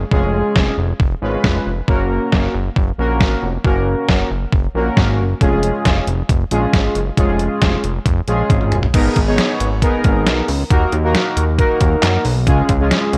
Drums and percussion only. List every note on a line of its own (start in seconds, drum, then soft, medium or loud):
0.12 kick loud
0.56 kick loud
0.56 snare loud
1.00 kick loud
1.44 kick loud
1.44 snare loud
1.88 kick loud
2.32 kick loud
2.32 snare loud
2.76 kick loud
3.21 kick loud
3.21 snare loud
3.65 kick loud
4.09 kick loud
4.09 snare loud
4.53 kick loud
4.97 kick loud
4.97 snare loud
5.41 kick loud
5.41 closed hi-hat medium
5.63 closed hi-hat medium
5.85 kick loud
5.85 snare loud
5.85 closed hi-hat medium
6.07 closed hi-hat medium
6.29 kick loud
6.29 closed hi-hat medium
6.51 closed hi-hat medium
6.73 kick loud
6.73 snare loud
6.73 closed hi-hat medium
6.95 closed hi-hat medium
7.17 kick loud
7.17 closed hi-hat medium
7.39 closed hi-hat medium
7.62 kick loud
7.62 snare loud
7.62 closed hi-hat medium
7.84 closed hi-hat medium
8.06 kick loud
8.06 closed hi-hat medium
8.28 closed hi-hat medium
8.50 kick loud
8.50 closed hi-hat medium
8.50 high tom medium
8.61 mid tom medium
8.72 closed hi-hat medium
8.72 mid tom medium
8.83 floor tom medium
8.94 kick loud
8.94 closed hi-hat medium
8.94 crash loud
9.16 kick medium
9.16 closed hi-hat medium
9.38 snare loud
9.38 closed hi-hat medium
9.60 closed hi-hat medium
9.82 kick medium
9.82 closed hi-hat medium
10.04 kick medium
10.04 closed hi-hat medium
10.26 snare loud
10.26 closed hi-hat medium
10.48 open hi-hat medium
10.70 kick loud
10.70 closed hi-hat medium
10.92 closed hi-hat medium
11.15 snare loud
11.15 closed hi-hat medium
11.37 closed hi-hat medium
11.59 kick medium
11.59 closed hi-hat medium
11.81 kick medium
11.81 closed hi-hat medium
12.03 snare loud
12.03 clap loud
12.03 closed hi-hat medium
12.25 open hi-hat medium
12.47 kick loud
12.47 closed hi-hat medium
12.69 kick medium
12.69 closed hi-hat medium
12.91 snare loud
12.91 closed hi-hat medium
13.13 closed hi-hat medium